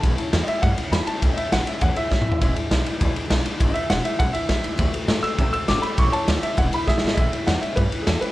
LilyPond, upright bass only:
\new Staff \with { instrumentName = "Upright bass" } { \clef bass \time 4/4 \key e \dorian \tempo 4 = 202 a,,8 r8 e,8 r8 g,8 r8 e,8 r8 | cis,8 r8 a,,8 r8 e,8 r8 fis,8 dis,8 | e,,8 r8 b,,8 r8 d,8 r8 b,,8 r8 | gis,,8 r8 e,,8 r8 b,,8 r8 cis,8 d,8 |
d,8 r8 a,8 r8 c8 r8 gis,,8 r8 | a,,8 r8 d,8 r8 e,,8 r8 cis,8 gis,,8 | a,,8 r8 e,8 r8 g,8 r8 e,8 r8 | }